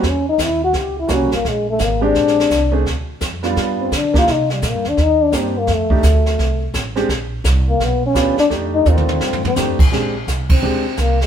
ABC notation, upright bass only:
X:1
M:4/4
L:1/8
Q:"Swing" 1/4=170
K:Fdor
V:1 name="Upright bass" clef=bass
=E,,2 _E,,2 ^C,,2 (3=C,, B,,, G,,, | B,,,2 A,,,2 B,,,2 C,,2 | D,,2 F,,2 G,,2 D,2 | C,2 (3B,, G,, E,, E,,2 G,,2 |
F,,2 D,,2 C,,2 =A,,,2 | B,,,2 C,,2 =B,,,2 D,, z | F,,2 E,,2 G,,2 F,, z | B,,,2 C,,2 D,,2 C,,2 |]